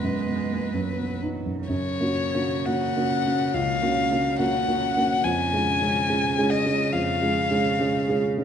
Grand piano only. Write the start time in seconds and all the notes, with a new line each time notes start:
Already playing: E2 F#2 B3 D#4
0.03 F#2
0.27 B3
0.51 A#3
0.74 F#2
0.98 B3
1.22 D#4
1.46 F#2
1.69 F#2
2.00 A#3 C#4 F#4
2.34 A#3 C#4 F#4
2.66 A#3 C#4 F#4
2.96 A#3 C#4 F#4
3.26 A#3 C#4 F#4
3.54 C#2
3.82 A#3 C#4 F#4
4.11 A#3 C#4 F#4
4.39 A#3 C#4 F#4
4.68 A#3 C#4 F#4
4.97 A#3 C#4 F#4
5.24 F2
5.53 G#3 C#4 G#4
5.81 G#3 C#4 G#4
6.09 G#3 C#4 G#4
6.38 G#3 C#4 G#4
6.66 G#3 C#4 G#4
6.93 F2
7.22 G#3 C#4 G#4
7.50 G#3 C#4 G#4
7.79 G#3 C#4 G#4
8.08 G#3 C#4 G#4
8.38 G#3 C#4 G#4